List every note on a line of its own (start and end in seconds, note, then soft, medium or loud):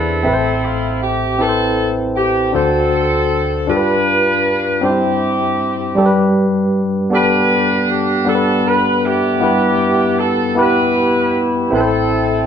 0.00 0.22 E2 medium
0.00 0.22 E3 medium
0.00 0.23 B3 medium
0.00 0.98 C4 medium
0.00 0.22 D4 medium
0.00 0.28 D4 medium
0.00 0.27 E4 soft
0.00 0.98 E4 medium
0.00 0.28 G#4 medium
0.00 0.64 A4 medium
0.00 0.27 B4 medium
0.23 2.50 A1 medium
0.23 2.50 A2 soft
0.23 1.13 C4 medium
0.23 1.14 A4 medium
0.23 0.33 B4 medium
0.23 1.13 E5 medium
0.33 1.18 C5 medium
0.65 1.02 F4 medium
1.03 1.40 G4 medium
1.39 2.27 C4 medium
1.39 2.28 E4 medium
1.39 2.29 A4 medium
1.39 1.90 A4 medium
1.39 1.48 B4 medium
1.49 2.33 C5 medium
2.16 2.52 G4 medium
2.52 3.65 D2 medium
2.52 3.65 D3 soft
2.52 3.65 C4 medium
2.52 3.42 D4 medium
2.52 3.42 F#4 medium
2.52 3.65 F#4 medium
2.52 3.43 A4 medium
2.52 3.65 A4 medium
2.52 3.43 C5 medium
3.67 4.79 G2 medium
3.67 4.56 D4 medium
3.67 4.80 D4 medium
3.67 4.57 F4 medium
3.67 4.80 F4 medium
3.67 4.57 G4 medium
3.67 3.76 A4 medium
3.67 4.80 B4 medium
3.77 4.61 B4 medium
4.81 5.94 G2 soft
4.81 5.71 C4 medium
4.81 6.33 C4 medium
4.81 4.89 D4 soft
4.81 6.33 E4 medium
4.81 5.72 G4 medium
4.81 6.37 G4 medium
4.81 5.73 C5 medium
4.89 5.75 E4 medium
5.95 8.23 G2 medium
5.95 6.85 G3 medium
5.95 6.86 D4 medium
5.95 6.86 G4 medium
5.95 6.05 A4 medium
6.06 6.90 B4 medium
7.10 8.00 B3 medium
7.10 8.00 D4 medium
7.10 8.24 D4 medium
7.10 8.01 G4 medium
7.10 7.90 G4 medium
7.10 8.02 A4 medium
7.15 7.86 B4 loud
7.92 8.29 G4 medium
8.25 9.38 G2 medium
8.25 9.15 B3 medium
8.25 9.16 D4 medium
8.25 9.16 G4 medium
8.29 8.35 A4 medium
8.29 8.67 A4 medium
8.35 9.20 B4 medium
8.68 9.05 B4 medium
9.05 10.15 B3 medium
9.05 10.15 E4 medium
9.05 10.20 G4 medium
9.40 11.69 G2 medium
9.40 10.30 B3 medium
9.40 10.31 E4 medium
9.40 10.31 G4 medium
9.40 10.32 B4 medium
10.20 10.58 A4 medium
10.55 11.45 B3 medium
10.55 11.46 E4 medium
10.55 11.69 E4 medium
10.55 11.46 G4 medium
10.55 11.69 G4 medium
10.55 11.47 B4 medium
10.60 11.45 B4 medium
11.70 12.46 A1 soft
11.70 12.46 A2 soft
11.70 12.46 C4 medium
11.70 12.46 E4 medium
11.70 12.46 A4 medium
11.70 11.80 B4 medium
11.75 12.46 A4 medium
11.81 12.46 C5 medium